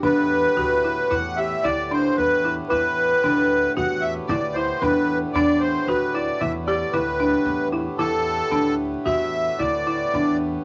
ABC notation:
X:1
M:5/4
L:1/16
Q:1/4=113
K:G
V:1 name="Accordion"
B8 f2 e2 d2 c2 B3 z | B8 f2 e2 d2 c2 B3 z | d2 c2 B2 d2 e2 d2 B6 z2 | A6 z2 e4 d6 z2 |]
V:2 name="Marimba"
D4 F2 E2 E2 G2 E2 D4 E2 | E4 D4 F4 E2 E2 D4 | D4 F2 E2 E2 G2 E2 D4 E2 | E4 D4 F4 E2 E2 D4 |]
V:3 name="Harmonium" clef=bass
[A,,G,B,]16- [A,,G,B,]4- | [A,,G,B,]16- [A,,G,B,]4- | [A,,G,B,]16- [A,,G,B,]4- | [A,,G,B,]16- [A,,G,B,]4 |]
V:4 name="Upright bass" clef=bass
E,,4 D,,4 E,,4 D,,4 E,,4 | E,,4 D,,4 E,,4 D,,4 E,,4 | E,,4 D,,4 E,,4 D,,4 E,,4 | E,,4 D,,4 E,,4 D,,4 E,,4 |]